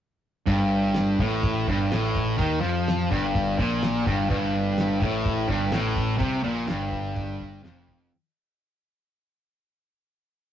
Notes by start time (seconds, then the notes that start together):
0.47 G1 G2, kick, crash
0.94 snare, crash
1.19 A1 A2, kick
1.43 kick, crash
1.68 G1 G2, kick
1.91 A1 A2, snare, crash
2.15 kick
2.38 D#2 D#3, kick, crash
2.61 F2 F3
2.88 snare, crash
3.10 G1 G2, kick
3.35 kick, crash
3.58 A#1 A#2, kick
3.82 snare, crash
4.07 G1 G2, kick
4.30 G1 G2, kick, crash
4.78 snare, crash
5.00 A1 A2, kick
5.26 kick, crash
5.48 G1 G2, kick
5.72 A1 A2, snare, crash
5.96 kick
6.18 C2 C3, kick, crash
6.44 A#1 A#2
6.67 G1 G2, snare, crash
6.93 kick
7.16 kick, crash
7.41 kick
7.63 F1 F2, snare, crash
7.89 kick